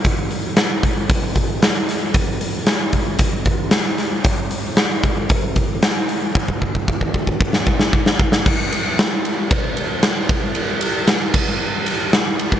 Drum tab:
CC |----------------|----------------|----------------|----------------|
RD |----------------|----------------|----------------|----------------|
HH |o-o-o-o-o-o-o-o-|o-o-o-o-o-o-o-o-|o-o-o-o-o-o-o-o-|----------------|
SD |----o-------o-o-|----o-------o-o-|----o-------o---|---------o-o-o-o|
BD |o-----o-o-o-----|o-----o-o-o-----|o-----o-o-o-----|ooooooooo-o-o-o-|

CC |x---------------|------x---------|
RD |--x-x-x-x-x-x-x-|x-x-x-----x-x-x-|
HH |----------------|----------------|
SD |----o-------o---|----o-------o---|
BD |o-------o-----o-|------o--------o|